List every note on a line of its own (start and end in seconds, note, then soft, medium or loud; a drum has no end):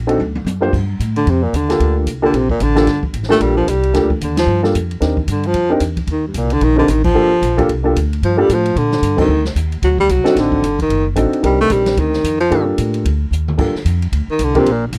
0.00 0.17 A#1 medium
0.07 0.17 C4 medium
0.07 0.17 D4 medium
0.07 0.17 D#4 medium
0.07 0.17 F#4 medium
0.07 0.18 A4 medium
0.07 ride soft
0.18 0.44 D2 medium
0.18 high tom soft
0.35 high tom medium
0.45 0.71 F#2 medium
0.45 hi-hat pedal medium
0.45 high tom medium
0.61 0.71 A#3 medium
0.61 0.71 D4 medium
0.61 0.71 F4 medium
0.61 0.71 G4 medium
0.61 0.71 C5 medium
0.61 floor tom medium
0.73 0.98 G2 medium
0.73 kick medium
0.73 crash medium
1.00 1.25 A2 medium
1.00 kick soft
1.00 hi-hat pedal medium
1.00 ride medium
1.16 1.31 D3 medium
1.16 ride soft
1.27 1.52 F2 medium
1.27 1.44 C3 medium
1.27 kick soft
1.27 ride medium
1.43 1.58 A#2 medium
1.53 1.79 D#2 medium
1.53 1.97 D3 medium
1.53 kick soft
1.53 hi-hat pedal medium
1.53 ride medium
1.69 2.04 A#3 medium
1.69 2.04 D4 medium
1.69 2.04 F4 medium
1.69 2.05 G4 medium
1.69 2.05 A4 medium
1.69 snare soft
1.69 ride soft
1.80 2.05 D2 medium
1.80 kick soft
1.80 ride medium
2.06 2.32 C2 medium
2.06 kick soft
2.06 hi-hat pedal medium
2.06 ride medium
2.22 2.37 D3 medium
2.22 2.32 A#3 medium
2.22 2.32 D4 medium
2.22 2.32 F4 medium
2.22 2.32 G4 medium
2.22 2.32 A4 medium
2.33 2.59 A#1 medium
2.33 2.50 C3 medium
2.33 kick soft
2.33 ride medium
2.49 2.64 A#2 medium
2.49 kick medium
2.60 2.86 A1 medium
2.60 3.04 D3 medium
2.60 kick soft
2.60 hi-hat pedal soft
2.60 ride medium
2.75 2.85 A#3 medium
2.75 2.85 D4 medium
2.75 2.85 F4 medium
2.75 2.86 G4 medium
2.75 2.86 A4 medium
2.75 snare soft
2.75 ride soft
2.86 3.12 G1 medium
2.86 kick soft
2.86 snare soft
2.86 ride medium
3.03 kick medium
3.13 3.39 A1 medium
3.13 kick soft
3.13 hi-hat pedal soft
3.13 ride medium
3.23 snare soft
3.29 3.43 A3 medium
3.29 3.64 A#3 medium
3.29 3.64 D4 medium
3.29 3.65 F4 medium
3.29 3.65 G4 medium
3.29 3.65 A4 medium
3.29 snare soft
3.40 3.66 A#1 medium
3.40 3.56 G3 medium
3.40 kick soft
3.40 ride medium
3.57 3.71 F3 medium
3.67 3.93 C2 medium
3.67 4.11 G3 medium
3.67 kick soft
3.67 hi-hat pedal soft
3.67 ride medium
3.83 ride soft
3.94 4.19 D2 medium
3.94 4.08 A#3 medium
3.94 4.08 D4 medium
3.94 4.08 F4 medium
3.94 4.08 G4 medium
3.94 4.09 A4 medium
3.94 kick soft
3.94 snare soft
3.94 ride medium
4.10 kick soft
4.21 4.46 D#2 medium
4.21 4.37 D3 medium
4.21 kick soft
4.21 hi-hat pedal medium
4.21 ride medium
4.37 4.62 F3 medium
4.37 snare medium
4.37 ride medium
4.46 4.73 G2 medium
4.63 4.72 A#3 medium
4.63 4.73 D4 medium
4.63 4.73 F4 medium
4.63 4.73 G4 medium
4.63 4.73 A4 medium
4.63 snare soft
4.75 5.00 F2 medium
4.75 kick soft
4.75 hi-hat pedal soft
4.75 ride medium
4.91 ride soft
5.01 5.27 D#2 medium
5.01 5.15 C4 medium
5.01 5.15 D4 soft
5.01 5.15 D#4 medium
5.01 5.15 G4 soft
5.01 5.15 A#4 medium
5.01 kick soft
5.01 snare soft
5.01 ride medium
5.17 kick soft
5.27 5.53 G2 medium
5.27 5.48 D3 medium
5.27 kick soft
5.27 hi-hat pedal medium
5.27 ride medium
5.43 5.72 F3 medium
5.43 ride soft
5.54 5.80 F2 medium
5.54 kick soft
5.54 ride medium
5.70 5.79 C4 medium
5.70 5.80 D4 medium
5.70 5.80 D#4 medium
5.70 5.80 G4 medium
5.70 5.80 A#4 medium
5.80 6.06 E2 medium
5.80 kick soft
5.80 hi-hat pedal soft
5.80 ride medium
5.97 kick soft
5.97 ride soft
6.07 6.33 D#2 medium
6.07 kick soft
6.07 ride medium
6.12 6.25 D#3 medium
6.27 6.39 G2 soft
6.34 6.60 C2 medium
6.34 6.54 A#2 medium
6.34 kick soft
6.34 hi-hat pedal soft
6.34 ride medium
6.50 6.65 D3 medium
6.50 ride soft
6.61 6.87 A#1 medium
6.61 6.78 D#3 loud
6.61 kick soft
6.61 ride medium
6.76 6.91 D3 medium
6.76 6.86 C4 medium
6.76 6.86 D4 medium
6.76 6.87 D#4 medium
6.76 6.87 G4 medium
6.76 6.87 A#4 medium
6.88 7.14 A1 medium
6.88 7.04 D#3 medium
6.88 kick soft
6.88 hi-hat pedal medium
6.88 ride medium
7.04 7.64 F3 medium
7.04 kick medium
7.04 crash medium
7.14 7.29 G1 medium
7.14 7.29 A#3 medium
7.14 7.29 D4 medium
7.14 7.29 F4 medium
7.14 7.29 G4 medium
7.14 7.29 A4 medium
7.32 muted upright bass stroke soft
7.42 7.67 A#1 medium
7.42 kick soft
7.42 hi-hat pedal soft
7.42 ride medium
7.57 7.67 A#3 medium
7.57 7.67 D4 medium
7.57 7.67 F4 medium
7.57 7.67 G4 medium
7.57 7.67 A4 medium
7.57 kick medium
7.57 ride soft
7.69 7.95 C2 medium
7.69 kick soft
7.69 ride medium
7.83 7.93 A#3 medium
7.83 7.94 D4 medium
7.83 7.94 F4 medium
7.83 7.94 G4 medium
7.83 7.94 A4 medium
7.96 8.21 D2 medium
7.96 kick soft
7.96 hi-hat pedal soft
7.96 ride medium
8.13 ride soft
8.22 8.48 G2 medium
8.22 8.41 F3 medium
8.22 kick soft
8.22 ride medium
8.37 8.55 G3 medium
8.37 8.47 A#3 medium
8.37 8.47 D4 medium
8.37 8.47 F4 medium
8.37 8.47 G4 medium
8.37 8.48 A4 medium
8.49 8.75 A2 medium
8.49 kick soft
8.49 hi-hat pedal medium
8.49 ride medium
8.54 8.79 F3 medium
8.65 ride soft
8.76 9.01 A#2 medium
8.76 9.19 D3 medium
8.76 kick soft
8.76 ride medium
8.92 snare soft
9.02 9.27 G2 medium
9.02 kick soft
9.02 hi-hat pedal soft
9.02 ride medium
9.17 9.44 D#3 medium
9.17 9.27 C4 medium
9.17 9.27 D4 medium
9.17 9.28 D#4 medium
9.17 9.27 F#4 medium
9.17 9.28 A4 medium
9.17 kick medium
9.17 crash medium
9.28 9.54 D2 medium
9.45 snare soft
9.55 9.81 D#2 medium
9.55 kick soft
9.55 hi-hat pedal medium
9.55 ride medium
9.72 ride soft
9.82 10.08 D2 medium
9.82 9.98 F#3 medium
9.82 kick soft
9.82 ride medium
9.98 10.13 G3 medium
9.98 kick soft
10.09 10.24 C2 medium
10.09 10.41 F#3 medium
10.09 kick soft
10.09 hi-hat pedal soft
10.09 ride medium
10.24 10.60 C4 medium
10.24 10.60 D4 medium
10.24 10.61 D#4 medium
10.24 10.61 F#4 medium
10.24 10.61 A4 medium
10.24 muted upright bass stroke soft
10.24 snare soft
10.24 ride soft
10.36 10.62 A1 medium
10.36 kick soft
10.36 snare soft
10.36 ride medium
10.40 10.81 D3 medium
10.52 kick medium
10.62 10.89 G1 medium
10.62 kick soft
10.62 hi-hat pedal medium
10.62 ride medium
10.79 11.06 D#3 medium
10.79 kick soft
10.79 ride soft
10.89 11.15 F#1 medium
10.89 kick soft
10.89 ride medium
11.16 11.31 A1 medium
11.16 11.41 C4 medium
11.16 11.41 D4 medium
11.16 11.42 D#4 medium
11.16 11.44 F#4 medium
11.16 11.44 A4 medium
11.16 kick soft
11.16 hi-hat pedal medium
11.16 ride medium
11.31 muted upright bass stroke soft
11.31 ride soft
11.43 11.69 C2 medium
11.43 11.59 G3 medium
11.43 12.17 C4 medium
11.43 12.17 D4 medium
11.43 12.17 D#4 medium
11.43 12.17 G4 medium
11.43 12.18 A#4 medium
11.43 kick soft
11.43 ride medium
11.61 11.74 A3 loud
11.70 11.96 A#1 medium
11.70 12.01 G3 medium
11.70 kick soft
11.70 hi-hat pedal medium
11.70 ride medium
11.86 snare medium
11.86 ride soft
11.97 12.23 D2 medium
11.97 12.40 D#3 medium
11.97 kick soft
11.97 ride medium
12.13 snare soft
12.24 12.50 F2 medium
12.24 kick soft
12.24 hi-hat pedal medium
12.24 ride medium
12.40 12.65 F3 medium
12.40 ride soft
12.50 12.77 G2 medium
12.50 13.04 A#3 medium
12.50 13.04 D4 medium
12.50 13.04 F4 medium
12.50 13.05 G4 medium
12.50 13.05 A4 medium
12.50 kick soft
12.50 ride medium
12.78 13.04 A2 medium
12.78 kick soft
12.78 hi-hat pedal medium
12.78 ride medium
12.94 ride soft
13.05 13.30 D2 medium
13.05 kick soft
13.05 ride medium
13.31 13.57 D#2 medium
13.31 hi-hat pedal medium
13.48 mid tom medium
13.57 13.73 G2 medium
13.57 13.72 A#3 medium
13.57 13.72 D4 medium
13.57 13.73 F4 soft
13.57 13.73 G4 medium
13.57 13.73 A4 medium
13.57 kick medium
13.57 crash medium
13.75 muted upright bass stroke soft
13.75 snare soft
13.85 14.11 F2 medium
13.85 kick soft
13.85 hi-hat pedal soft
13.85 ride medium
14.02 ride soft
14.12 14.27 D2 medium
14.12 kick soft
14.12 ride medium
14.28 14.45 D#3 medium
14.28 muted upright bass stroke soft
14.39 14.65 C2 medium
14.39 kick soft
14.39 hi-hat pedal soft
14.39 ride medium
14.44 14.60 D3 medium
14.54 14.65 A#3 medium
14.54 14.65 D4 medium
14.54 14.65 F4 medium
14.54 14.65 G4 medium
14.54 14.65 A#4 medium
14.54 kick soft
14.54 ride soft
14.59 14.73 C3 medium
14.66 14.92 A#1 medium
14.66 kick soft
14.66 ride medium
14.72 14.85 A#2 medium
14.87 14.98 D2 soft
14.93 14.98 A1 medium
14.93 kick soft
14.93 hi-hat pedal medium
14.93 ride medium